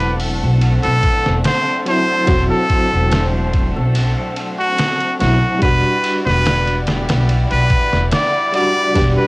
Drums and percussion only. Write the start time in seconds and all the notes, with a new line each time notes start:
0.00 ride
0.20 open hi-hat
0.61 ride
0.83 ride
1.03 kick, ride
1.26 snare
1.44 snare, ride
1.86 ride
2.27 kick, ride
2.70 kick, ride
3.12 snare, ride
3.53 kick, ride
3.95 ride
4.36 ride
4.78 snare, ride
5.00 ride
5.20 snare, ride
5.62 kick, ride
6.04 ride
6.27 snare
6.46 snare, ride
6.68 ride
6.87 snare, ride
7.09 snare, ride
7.29 ride
7.51 ride
7.70 kick, ride
7.93 snare
8.12 snare, ride
8.54 ride
8.95 kick, ride